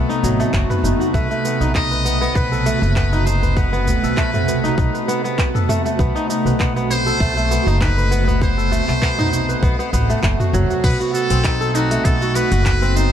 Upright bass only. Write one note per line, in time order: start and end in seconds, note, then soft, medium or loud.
0.23 0.42 A1 medium
0.53 0.63 F#1 medium
0.83 0.94 F#1 medium
1.14 1.24 B1 medium
1.61 2.26 B1 medium
2.35 2.72 B1 medium
2.82 3.93 F#1 loud
4.03 4.69 B1 medium
4.78 4.88 B1 medium
5.99 6.09 B1 medium
6.45 7.11 B1 medium
7.20 7.57 B1 medium
7.67 8.78 F#1 loud
8.88 9.54 B1 medium
9.62 9.72 B1 medium
9.93 10.12 A1 medium
10.23 10.33 F#1 medium
10.53 10.63 F#1 medium
10.84 10.94 B1 medium
11.30 11.96 B1 medium
12.05 12.41 B1 medium
12.52 13.12 F#1 loud